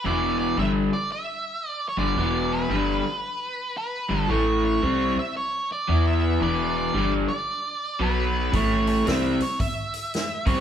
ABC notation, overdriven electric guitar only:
X:1
M:4/4
L:1/8
Q:"Swing" 1/4=113
K:A
V:1 name="Overdriven electric guitar" clef=bass
[E,,B,,E,]2 [=G,,D,=G,] z4 [G,,D,G,] | [E,,B,,E,]2 [=G,,D,=G,] z4 [G,,D,G,] | [A,,E,A,]2 [=C,=G,=C] z3 [E,B,E]2 | [E,,B,,E,]2 [=G,,D,=G,] z3 [B,,F,B,]2 |
[A,,E,A,]2 [=C,=G,=C] z4 [C,G,C] |]